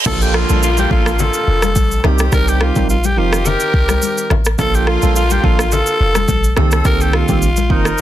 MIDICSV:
0, 0, Header, 1, 7, 480
1, 0, Start_track
1, 0, Key_signature, -2, "major"
1, 0, Tempo, 566038
1, 51, Time_signature, 4, 2, 24, 8
1, 6792, End_track
2, 0, Start_track
2, 0, Title_t, "Alto saxophone"
2, 0, Program_c, 0, 65
2, 58, Note_on_c, 0, 69, 116
2, 191, Note_on_c, 0, 67, 101
2, 203, Note_off_c, 0, 69, 0
2, 298, Note_on_c, 0, 65, 92
2, 311, Note_off_c, 0, 67, 0
2, 534, Note_off_c, 0, 65, 0
2, 539, Note_on_c, 0, 65, 99
2, 658, Note_off_c, 0, 65, 0
2, 671, Note_on_c, 0, 67, 91
2, 767, Note_off_c, 0, 67, 0
2, 780, Note_on_c, 0, 65, 88
2, 1020, Note_on_c, 0, 69, 98
2, 1033, Note_off_c, 0, 65, 0
2, 1735, Note_off_c, 0, 69, 0
2, 1980, Note_on_c, 0, 70, 124
2, 2112, Note_on_c, 0, 67, 106
2, 2124, Note_off_c, 0, 70, 0
2, 2219, Note_on_c, 0, 65, 91
2, 2232, Note_off_c, 0, 67, 0
2, 2455, Note_off_c, 0, 65, 0
2, 2460, Note_on_c, 0, 65, 90
2, 2591, Note_on_c, 0, 67, 93
2, 2604, Note_off_c, 0, 65, 0
2, 2700, Note_on_c, 0, 65, 90
2, 2712, Note_off_c, 0, 67, 0
2, 2939, Note_on_c, 0, 70, 102
2, 2952, Note_off_c, 0, 65, 0
2, 3655, Note_off_c, 0, 70, 0
2, 3900, Note_on_c, 0, 69, 121
2, 4031, Note_on_c, 0, 67, 102
2, 4044, Note_off_c, 0, 69, 0
2, 4139, Note_on_c, 0, 65, 95
2, 4152, Note_off_c, 0, 67, 0
2, 4373, Note_off_c, 0, 65, 0
2, 4378, Note_on_c, 0, 65, 96
2, 4510, Note_on_c, 0, 67, 93
2, 4523, Note_off_c, 0, 65, 0
2, 4619, Note_on_c, 0, 65, 91
2, 4631, Note_off_c, 0, 67, 0
2, 4857, Note_on_c, 0, 69, 102
2, 4870, Note_off_c, 0, 65, 0
2, 5574, Note_off_c, 0, 69, 0
2, 5818, Note_on_c, 0, 70, 125
2, 5951, Note_on_c, 0, 67, 106
2, 5964, Note_off_c, 0, 70, 0
2, 6059, Note_on_c, 0, 65, 107
2, 6072, Note_off_c, 0, 67, 0
2, 6539, Note_on_c, 0, 63, 90
2, 6552, Note_off_c, 0, 65, 0
2, 6792, Note_off_c, 0, 63, 0
2, 6792, End_track
3, 0, Start_track
3, 0, Title_t, "Horn section"
3, 0, Program_c, 1, 61
3, 51, Note_on_c, 1, 50, 91
3, 51, Note_on_c, 1, 58, 92
3, 51, Note_on_c, 1, 65, 100
3, 1462, Note_off_c, 1, 50, 0
3, 1462, Note_off_c, 1, 58, 0
3, 1462, Note_off_c, 1, 65, 0
3, 1730, Note_on_c, 1, 51, 84
3, 1730, Note_on_c, 1, 67, 90
3, 1731, Note_on_c, 1, 60, 80
3, 2436, Note_off_c, 1, 51, 0
3, 2436, Note_off_c, 1, 60, 0
3, 2436, Note_off_c, 1, 67, 0
3, 2692, Note_on_c, 1, 51, 80
3, 2692, Note_on_c, 1, 60, 80
3, 2692, Note_on_c, 1, 67, 91
3, 3632, Note_off_c, 1, 51, 0
3, 3632, Note_off_c, 1, 60, 0
3, 3632, Note_off_c, 1, 67, 0
3, 3891, Note_on_c, 1, 50, 89
3, 3891, Note_on_c, 1, 58, 89
3, 3891, Note_on_c, 1, 65, 100
3, 5302, Note_off_c, 1, 50, 0
3, 5302, Note_off_c, 1, 58, 0
3, 5302, Note_off_c, 1, 65, 0
3, 5570, Note_on_c, 1, 51, 81
3, 5570, Note_on_c, 1, 60, 81
3, 5570, Note_on_c, 1, 69, 96
3, 6276, Note_off_c, 1, 51, 0
3, 6276, Note_off_c, 1, 60, 0
3, 6276, Note_off_c, 1, 69, 0
3, 6530, Note_on_c, 1, 63, 82
3, 6530, Note_on_c, 1, 70, 98
3, 6531, Note_on_c, 1, 53, 84
3, 6792, Note_off_c, 1, 53, 0
3, 6792, Note_off_c, 1, 63, 0
3, 6792, Note_off_c, 1, 70, 0
3, 6792, End_track
4, 0, Start_track
4, 0, Title_t, "Tine electric piano"
4, 0, Program_c, 2, 4
4, 49, Note_on_c, 2, 53, 95
4, 50, Note_on_c, 2, 58, 84
4, 52, Note_on_c, 2, 62, 88
4, 53, Note_on_c, 2, 69, 97
4, 390, Note_off_c, 2, 53, 0
4, 391, Note_off_c, 2, 58, 0
4, 392, Note_off_c, 2, 62, 0
4, 392, Note_off_c, 2, 69, 0
4, 421, Note_on_c, 2, 53, 81
4, 422, Note_on_c, 2, 58, 70
4, 424, Note_on_c, 2, 62, 68
4, 425, Note_on_c, 2, 69, 83
4, 578, Note_off_c, 2, 53, 0
4, 579, Note_off_c, 2, 58, 0
4, 580, Note_off_c, 2, 62, 0
4, 581, Note_off_c, 2, 69, 0
4, 768, Note_on_c, 2, 53, 76
4, 770, Note_on_c, 2, 58, 71
4, 772, Note_on_c, 2, 62, 70
4, 773, Note_on_c, 2, 69, 86
4, 941, Note_off_c, 2, 53, 0
4, 942, Note_off_c, 2, 58, 0
4, 943, Note_off_c, 2, 62, 0
4, 944, Note_off_c, 2, 69, 0
4, 1729, Note_on_c, 2, 55, 79
4, 1730, Note_on_c, 2, 60, 75
4, 1732, Note_on_c, 2, 63, 75
4, 1734, Note_on_c, 2, 70, 84
4, 1901, Note_off_c, 2, 55, 0
4, 1902, Note_off_c, 2, 60, 0
4, 1903, Note_off_c, 2, 63, 0
4, 1904, Note_off_c, 2, 70, 0
4, 1968, Note_on_c, 2, 55, 88
4, 1969, Note_on_c, 2, 60, 87
4, 1971, Note_on_c, 2, 63, 87
4, 1973, Note_on_c, 2, 70, 106
4, 2310, Note_off_c, 2, 55, 0
4, 2310, Note_off_c, 2, 60, 0
4, 2311, Note_off_c, 2, 63, 0
4, 2312, Note_off_c, 2, 70, 0
4, 2340, Note_on_c, 2, 55, 78
4, 2342, Note_on_c, 2, 60, 69
4, 2344, Note_on_c, 2, 63, 72
4, 2345, Note_on_c, 2, 70, 84
4, 2498, Note_off_c, 2, 55, 0
4, 2499, Note_off_c, 2, 60, 0
4, 2500, Note_off_c, 2, 63, 0
4, 2501, Note_off_c, 2, 70, 0
4, 2688, Note_on_c, 2, 53, 78
4, 2690, Note_on_c, 2, 60, 70
4, 2692, Note_on_c, 2, 63, 72
4, 2693, Note_on_c, 2, 70, 86
4, 2861, Note_off_c, 2, 53, 0
4, 2862, Note_off_c, 2, 60, 0
4, 2863, Note_off_c, 2, 63, 0
4, 2864, Note_off_c, 2, 70, 0
4, 3888, Note_on_c, 2, 53, 91
4, 3890, Note_on_c, 2, 58, 85
4, 3891, Note_on_c, 2, 62, 83
4, 3894, Note_on_c, 2, 69, 103
4, 4230, Note_off_c, 2, 53, 0
4, 4231, Note_off_c, 2, 58, 0
4, 4231, Note_off_c, 2, 62, 0
4, 4232, Note_off_c, 2, 69, 0
4, 4260, Note_on_c, 2, 53, 83
4, 4262, Note_on_c, 2, 58, 72
4, 4263, Note_on_c, 2, 62, 74
4, 4265, Note_on_c, 2, 69, 91
4, 4418, Note_off_c, 2, 53, 0
4, 4419, Note_off_c, 2, 58, 0
4, 4420, Note_off_c, 2, 62, 0
4, 4420, Note_off_c, 2, 69, 0
4, 4608, Note_on_c, 2, 53, 80
4, 4610, Note_on_c, 2, 58, 71
4, 4611, Note_on_c, 2, 62, 72
4, 4613, Note_on_c, 2, 69, 87
4, 4781, Note_off_c, 2, 53, 0
4, 4782, Note_off_c, 2, 58, 0
4, 4783, Note_off_c, 2, 62, 0
4, 4784, Note_off_c, 2, 69, 0
4, 5568, Note_on_c, 2, 51, 80
4, 5570, Note_on_c, 2, 58, 74
4, 5572, Note_on_c, 2, 60, 71
4, 5573, Note_on_c, 2, 67, 91
4, 5741, Note_off_c, 2, 51, 0
4, 5742, Note_off_c, 2, 58, 0
4, 5743, Note_off_c, 2, 60, 0
4, 5744, Note_off_c, 2, 67, 0
4, 5807, Note_on_c, 2, 51, 91
4, 5809, Note_on_c, 2, 58, 86
4, 5811, Note_on_c, 2, 60, 85
4, 5813, Note_on_c, 2, 67, 106
4, 6149, Note_off_c, 2, 51, 0
4, 6150, Note_off_c, 2, 58, 0
4, 6151, Note_off_c, 2, 60, 0
4, 6152, Note_off_c, 2, 67, 0
4, 6179, Note_on_c, 2, 51, 80
4, 6181, Note_on_c, 2, 58, 72
4, 6183, Note_on_c, 2, 60, 73
4, 6185, Note_on_c, 2, 67, 87
4, 6338, Note_off_c, 2, 51, 0
4, 6339, Note_off_c, 2, 58, 0
4, 6339, Note_off_c, 2, 60, 0
4, 6340, Note_off_c, 2, 67, 0
4, 6527, Note_on_c, 2, 51, 76
4, 6529, Note_on_c, 2, 58, 72
4, 6531, Note_on_c, 2, 60, 73
4, 6533, Note_on_c, 2, 65, 88
4, 6701, Note_off_c, 2, 51, 0
4, 6702, Note_off_c, 2, 58, 0
4, 6702, Note_off_c, 2, 60, 0
4, 6703, Note_off_c, 2, 65, 0
4, 6792, End_track
5, 0, Start_track
5, 0, Title_t, "808-style bass"
5, 0, Program_c, 3, 38
5, 50, Note_on_c, 3, 34, 110
5, 377, Note_off_c, 3, 34, 0
5, 422, Note_on_c, 3, 34, 95
5, 728, Note_off_c, 3, 34, 0
5, 771, Note_on_c, 3, 33, 95
5, 1097, Note_off_c, 3, 33, 0
5, 1251, Note_on_c, 3, 29, 88
5, 1490, Note_on_c, 3, 34, 94
5, 1503, Note_off_c, 3, 29, 0
5, 1701, Note_off_c, 3, 34, 0
5, 1731, Note_on_c, 3, 36, 97
5, 1942, Note_off_c, 3, 36, 0
5, 1970, Note_on_c, 3, 36, 114
5, 2297, Note_off_c, 3, 36, 0
5, 2342, Note_on_c, 3, 34, 80
5, 2691, Note_on_c, 3, 29, 108
5, 2704, Note_off_c, 3, 34, 0
5, 3018, Note_off_c, 3, 29, 0
5, 3170, Note_on_c, 3, 36, 99
5, 3381, Note_off_c, 3, 36, 0
5, 3651, Note_on_c, 3, 33, 90
5, 3862, Note_off_c, 3, 33, 0
5, 3890, Note_on_c, 3, 34, 113
5, 4217, Note_off_c, 3, 34, 0
5, 4263, Note_on_c, 3, 34, 100
5, 4569, Note_off_c, 3, 34, 0
5, 4611, Note_on_c, 3, 33, 93
5, 4937, Note_off_c, 3, 33, 0
5, 5091, Note_on_c, 3, 29, 97
5, 5302, Note_off_c, 3, 29, 0
5, 5330, Note_on_c, 3, 34, 101
5, 5541, Note_off_c, 3, 34, 0
5, 5571, Note_on_c, 3, 36, 106
5, 5782, Note_off_c, 3, 36, 0
5, 5809, Note_on_c, 3, 36, 109
5, 6137, Note_off_c, 3, 36, 0
5, 6182, Note_on_c, 3, 34, 94
5, 6530, Note_on_c, 3, 29, 95
5, 6543, Note_off_c, 3, 34, 0
5, 6741, Note_off_c, 3, 29, 0
5, 6792, End_track
6, 0, Start_track
6, 0, Title_t, "Downlifter"
6, 0, Program_c, 4, 103
6, 50, Note_on_c, 4, 60, 86
6, 3890, Note_off_c, 4, 60, 0
6, 6792, End_track
7, 0, Start_track
7, 0, Title_t, "Drums"
7, 50, Note_on_c, 9, 36, 125
7, 51, Note_on_c, 9, 49, 102
7, 51, Note_on_c, 9, 82, 74
7, 52, Note_on_c, 9, 37, 96
7, 52, Note_on_c, 9, 64, 76
7, 135, Note_off_c, 9, 36, 0
7, 135, Note_off_c, 9, 49, 0
7, 135, Note_off_c, 9, 82, 0
7, 136, Note_off_c, 9, 64, 0
7, 137, Note_off_c, 9, 37, 0
7, 183, Note_on_c, 9, 82, 57
7, 268, Note_off_c, 9, 82, 0
7, 290, Note_on_c, 9, 37, 98
7, 375, Note_off_c, 9, 37, 0
7, 418, Note_on_c, 9, 82, 46
7, 429, Note_on_c, 9, 63, 73
7, 503, Note_off_c, 9, 82, 0
7, 513, Note_off_c, 9, 63, 0
7, 535, Note_on_c, 9, 82, 84
7, 620, Note_off_c, 9, 82, 0
7, 656, Note_on_c, 9, 82, 58
7, 666, Note_on_c, 9, 63, 77
7, 741, Note_off_c, 9, 82, 0
7, 751, Note_off_c, 9, 63, 0
7, 770, Note_on_c, 9, 36, 111
7, 855, Note_off_c, 9, 36, 0
7, 900, Note_on_c, 9, 37, 99
7, 909, Note_on_c, 9, 82, 53
7, 985, Note_off_c, 9, 37, 0
7, 994, Note_off_c, 9, 82, 0
7, 1009, Note_on_c, 9, 82, 59
7, 1019, Note_on_c, 9, 64, 84
7, 1094, Note_off_c, 9, 82, 0
7, 1104, Note_off_c, 9, 64, 0
7, 1134, Note_on_c, 9, 82, 57
7, 1218, Note_off_c, 9, 82, 0
7, 1377, Note_on_c, 9, 37, 96
7, 1379, Note_on_c, 9, 82, 64
7, 1387, Note_on_c, 9, 63, 84
7, 1461, Note_off_c, 9, 37, 0
7, 1464, Note_off_c, 9, 82, 0
7, 1472, Note_off_c, 9, 63, 0
7, 1490, Note_on_c, 9, 36, 101
7, 1490, Note_on_c, 9, 82, 93
7, 1497, Note_on_c, 9, 63, 73
7, 1575, Note_off_c, 9, 36, 0
7, 1575, Note_off_c, 9, 82, 0
7, 1582, Note_off_c, 9, 63, 0
7, 1622, Note_on_c, 9, 82, 59
7, 1707, Note_off_c, 9, 82, 0
7, 1729, Note_on_c, 9, 37, 85
7, 1734, Note_on_c, 9, 64, 94
7, 1814, Note_off_c, 9, 37, 0
7, 1819, Note_off_c, 9, 64, 0
7, 1854, Note_on_c, 9, 82, 63
7, 1866, Note_on_c, 9, 37, 98
7, 1939, Note_off_c, 9, 82, 0
7, 1951, Note_off_c, 9, 37, 0
7, 1970, Note_on_c, 9, 36, 115
7, 1970, Note_on_c, 9, 82, 75
7, 1971, Note_on_c, 9, 64, 77
7, 1972, Note_on_c, 9, 37, 95
7, 2055, Note_off_c, 9, 36, 0
7, 2055, Note_off_c, 9, 82, 0
7, 2056, Note_off_c, 9, 37, 0
7, 2056, Note_off_c, 9, 64, 0
7, 2103, Note_on_c, 9, 82, 54
7, 2188, Note_off_c, 9, 82, 0
7, 2210, Note_on_c, 9, 37, 99
7, 2295, Note_off_c, 9, 37, 0
7, 2338, Note_on_c, 9, 82, 45
7, 2342, Note_on_c, 9, 36, 93
7, 2348, Note_on_c, 9, 63, 68
7, 2423, Note_off_c, 9, 82, 0
7, 2427, Note_off_c, 9, 36, 0
7, 2433, Note_off_c, 9, 63, 0
7, 2455, Note_on_c, 9, 82, 76
7, 2540, Note_off_c, 9, 82, 0
7, 2576, Note_on_c, 9, 82, 56
7, 2585, Note_on_c, 9, 63, 80
7, 2661, Note_off_c, 9, 82, 0
7, 2670, Note_off_c, 9, 63, 0
7, 2820, Note_on_c, 9, 37, 101
7, 2830, Note_on_c, 9, 82, 57
7, 2905, Note_off_c, 9, 37, 0
7, 2914, Note_off_c, 9, 82, 0
7, 2929, Note_on_c, 9, 82, 65
7, 2939, Note_on_c, 9, 64, 82
7, 3014, Note_off_c, 9, 82, 0
7, 3024, Note_off_c, 9, 64, 0
7, 3054, Note_on_c, 9, 82, 57
7, 3138, Note_off_c, 9, 82, 0
7, 3170, Note_on_c, 9, 36, 91
7, 3255, Note_off_c, 9, 36, 0
7, 3297, Note_on_c, 9, 37, 96
7, 3299, Note_on_c, 9, 82, 64
7, 3308, Note_on_c, 9, 63, 84
7, 3382, Note_off_c, 9, 37, 0
7, 3384, Note_off_c, 9, 82, 0
7, 3392, Note_off_c, 9, 63, 0
7, 3410, Note_on_c, 9, 82, 91
7, 3418, Note_on_c, 9, 63, 73
7, 3495, Note_off_c, 9, 82, 0
7, 3503, Note_off_c, 9, 63, 0
7, 3543, Note_on_c, 9, 82, 55
7, 3628, Note_off_c, 9, 82, 0
7, 3649, Note_on_c, 9, 37, 86
7, 3656, Note_on_c, 9, 64, 91
7, 3734, Note_off_c, 9, 37, 0
7, 3740, Note_off_c, 9, 64, 0
7, 3774, Note_on_c, 9, 82, 64
7, 3786, Note_on_c, 9, 37, 96
7, 3859, Note_off_c, 9, 82, 0
7, 3871, Note_off_c, 9, 37, 0
7, 3891, Note_on_c, 9, 36, 125
7, 3891, Note_on_c, 9, 82, 76
7, 3892, Note_on_c, 9, 37, 97
7, 3892, Note_on_c, 9, 64, 76
7, 3975, Note_off_c, 9, 36, 0
7, 3975, Note_off_c, 9, 82, 0
7, 3977, Note_off_c, 9, 37, 0
7, 3977, Note_off_c, 9, 64, 0
7, 4024, Note_on_c, 9, 82, 57
7, 4108, Note_off_c, 9, 82, 0
7, 4131, Note_on_c, 9, 37, 94
7, 4215, Note_off_c, 9, 37, 0
7, 4258, Note_on_c, 9, 82, 45
7, 4269, Note_on_c, 9, 63, 72
7, 4343, Note_off_c, 9, 82, 0
7, 4354, Note_off_c, 9, 63, 0
7, 4376, Note_on_c, 9, 82, 80
7, 4461, Note_off_c, 9, 82, 0
7, 4496, Note_on_c, 9, 82, 59
7, 4505, Note_on_c, 9, 63, 81
7, 4581, Note_off_c, 9, 82, 0
7, 4590, Note_off_c, 9, 63, 0
7, 4610, Note_on_c, 9, 36, 108
7, 4695, Note_off_c, 9, 36, 0
7, 4740, Note_on_c, 9, 37, 96
7, 4749, Note_on_c, 9, 82, 56
7, 4825, Note_off_c, 9, 37, 0
7, 4834, Note_off_c, 9, 82, 0
7, 4848, Note_on_c, 9, 82, 62
7, 4859, Note_on_c, 9, 64, 82
7, 4933, Note_off_c, 9, 82, 0
7, 4944, Note_off_c, 9, 64, 0
7, 4973, Note_on_c, 9, 82, 58
7, 5058, Note_off_c, 9, 82, 0
7, 5216, Note_on_c, 9, 37, 97
7, 5218, Note_on_c, 9, 82, 60
7, 5227, Note_on_c, 9, 63, 88
7, 5301, Note_off_c, 9, 37, 0
7, 5303, Note_off_c, 9, 82, 0
7, 5312, Note_off_c, 9, 63, 0
7, 5328, Note_on_c, 9, 82, 89
7, 5330, Note_on_c, 9, 36, 97
7, 5337, Note_on_c, 9, 63, 74
7, 5413, Note_off_c, 9, 82, 0
7, 5414, Note_off_c, 9, 36, 0
7, 5422, Note_off_c, 9, 63, 0
7, 5461, Note_on_c, 9, 82, 55
7, 5546, Note_off_c, 9, 82, 0
7, 5568, Note_on_c, 9, 37, 88
7, 5575, Note_on_c, 9, 64, 88
7, 5652, Note_off_c, 9, 37, 0
7, 5659, Note_off_c, 9, 64, 0
7, 5693, Note_on_c, 9, 82, 65
7, 5705, Note_on_c, 9, 37, 98
7, 5777, Note_off_c, 9, 82, 0
7, 5789, Note_off_c, 9, 37, 0
7, 5809, Note_on_c, 9, 36, 124
7, 5809, Note_on_c, 9, 82, 72
7, 5810, Note_on_c, 9, 37, 96
7, 5811, Note_on_c, 9, 64, 73
7, 5894, Note_off_c, 9, 36, 0
7, 5894, Note_off_c, 9, 82, 0
7, 5895, Note_off_c, 9, 37, 0
7, 5896, Note_off_c, 9, 64, 0
7, 5942, Note_on_c, 9, 82, 56
7, 6027, Note_off_c, 9, 82, 0
7, 6049, Note_on_c, 9, 37, 102
7, 6134, Note_off_c, 9, 37, 0
7, 6177, Note_on_c, 9, 82, 49
7, 6181, Note_on_c, 9, 36, 97
7, 6187, Note_on_c, 9, 63, 73
7, 6262, Note_off_c, 9, 82, 0
7, 6266, Note_off_c, 9, 36, 0
7, 6272, Note_off_c, 9, 63, 0
7, 6295, Note_on_c, 9, 82, 79
7, 6379, Note_off_c, 9, 82, 0
7, 6415, Note_on_c, 9, 82, 55
7, 6425, Note_on_c, 9, 63, 77
7, 6500, Note_off_c, 9, 82, 0
7, 6509, Note_off_c, 9, 63, 0
7, 6530, Note_on_c, 9, 36, 111
7, 6615, Note_off_c, 9, 36, 0
7, 6659, Note_on_c, 9, 37, 103
7, 6668, Note_on_c, 9, 82, 55
7, 6744, Note_off_c, 9, 37, 0
7, 6753, Note_off_c, 9, 82, 0
7, 6792, End_track
0, 0, End_of_file